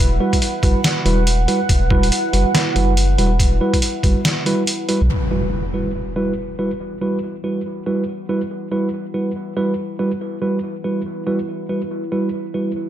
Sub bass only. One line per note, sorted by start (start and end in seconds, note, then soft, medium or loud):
0.00 0.19 E1 loud
0.63 0.75 F#1 medium
1.05 1.47 E1 medium
1.69 2.11 E1 loud
2.33 2.45 F#1 medium
2.76 3.17 F#1 loud
3.18 3.60 E1 medium
4.03 4.15 F#1 medium
5.01 5.09 B1 medium